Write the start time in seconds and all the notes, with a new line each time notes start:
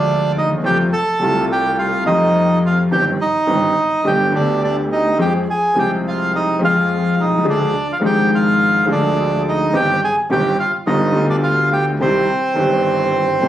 Already playing: D2 D3 F3 G#3 D4 F4 D5
0.35 D#2 D#4 D#5
0.42 D2
0.50 D#2
0.58 E2
0.64 F2 C3 F3 G3 A3 F4 G4 G5
0.93 A4 A5
1.20 C2 C3 G3 A3 F4
1.52 G4 G5
1.78 F4 F5
2.05 F2 C3 F3 G3 A3 D#4 D#5
2.10 F4
2.65 F4 F5
2.91 G1 G2 D#3 G3 C4 G4 G5
3.21 D#4 D#5
3.47 G1 G2 D#3 G3 C4 G4
4.04 G1 G2 D3 G3 B3 G4 G5
4.32 D2 D3 G3 B3 D4 G4
4.36 D5
4.63 D4 D5
4.92 D#4 D#5
5.18 F2 F3 G#3 C4 G4 G#4 G5
5.50 G#4 G#5
5.74 C2 C3 F3 G#3 C4
5.78 G4 G#4 G5
6.08 F4 F5
6.35 D#4 D#5
6.59 F2 F3 G#3 C4 G#4
6.64 F4 F5
7.17 C2 D#4
7.22 B1 D#5
7.31 C2
7.38 C#2
7.44 D2 D3 F3 G#3 D4 G#4
7.50 D4 D5
7.92 F4 F5
8.00 G#1 G#2 F3 G#3 D4
8.04 G4 G#4 G5
8.34 F4 F5
8.85 D2 D3 F3 G#3 D4 G#4
8.91 D4 D5
9.49 D#4 D#5
9.72 G1 G2 D#3 G3 C4 G4
9.76 G5
10.04 G#4 G#5
10.30 G1 G2 D#3 G3 C4 G4 G5
10.60 F4 F5
10.87 G1 G2 D3 G3 B3 D#4 F4 D#5
11.12 D2 D3 G3 B3
11.16 F4
11.30 D4 D5
11.43 F4 F5
11.73 G4 G5
12.00 C2 C3 D#3 G3 C4 G4 C5
12.54 G1 G2 D#3 G3 C4
12.59 G4
13.41 C2 C3 D#3 G3 C4 G4